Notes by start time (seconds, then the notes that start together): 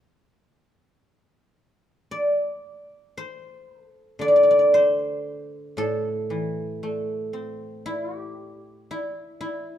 Already playing: G3 G4
2.11 D5
3.17 C5
3.84 A4
4.19 D3 D5
4.28 D5
4.36 D5
4.43 D5
4.51 D5
4.59 D5
4.74 C5
5.77 A2 A4
6.30 E3
6.83 A3
7.33 C4
7.86 E4
8.18 G4
8.91 E4
9.41 E4